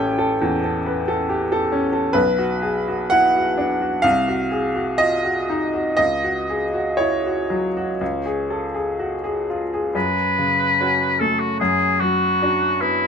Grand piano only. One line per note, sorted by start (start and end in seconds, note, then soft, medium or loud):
0.00 0.40 A1 medium
0.00 0.34 C#4 soft
0.00 1.29 G4 soft
0.00 0.18 A4 medium
0.00 0.86 B4 soft
0.00 2.15 G5 loud
0.00 2.20 A5 loud
0.18 0.55 A4 medium
0.42 0.78 E2 medium
0.64 1.00 A4 soft
0.86 1.09 B4 soft
1.08 1.43 A4 medium
1.29 1.52 G4 soft
1.52 1.87 A4 medium
1.72 2.08 C#4 medium
1.93 2.16 A4 soft
2.13 3.99 B1 medium
2.13 3.10 B4 medium
2.38 2.78 F#4 medium
2.62 2.88 G#4 soft
2.88 3.26 F#4 soft
3.10 3.35 E4 soft
3.10 4.03 F#5 loud
3.36 3.73 F#4 soft
3.58 3.95 D4 soft
3.81 4.05 F#4 soft
4.02 5.95 C2 medium
4.02 4.99 F5 medium
4.28 4.66 F#4 soft
4.51 4.76 G#4 soft
4.75 5.15 F#4 soft
4.98 5.25 F4 soft
4.98 5.95 D#5 medium
5.24 5.64 F#4 medium
5.50 5.89 D#4 soft
5.74 5.99 F#4 soft
5.97 7.96 C#2 medium
5.97 6.99 D#5 medium
6.24 6.64 F#4 soft
6.50 6.75 G#4 soft
6.74 7.15 F#4 soft
6.97 7.25 E4 soft
6.97 9.46 C#5 medium
7.26 7.66 F#4 soft
7.50 7.90 F#3 soft
7.77 8.01 F#4 soft
8.01 9.91 C#2 medium
8.26 8.64 G#4 soft
8.50 8.74 A4 soft
8.75 9.13 G#4 soft
8.99 9.23 F#4 soft
9.24 9.63 G#4 soft
9.50 9.87 F4 soft
9.74 9.95 G#4 soft
9.95 11.56 F#2 soft
10.39 11.04 C#3 soft
10.81 11.16 C#4 soft
10.81 11.16 F#4 soft
11.21 11.61 A3 soft
11.61 13.07 F#2 medium
12.02 12.65 F#3 soft
12.42 12.77 D4 soft
12.42 12.77 F#4 soft
12.81 13.07 B3 soft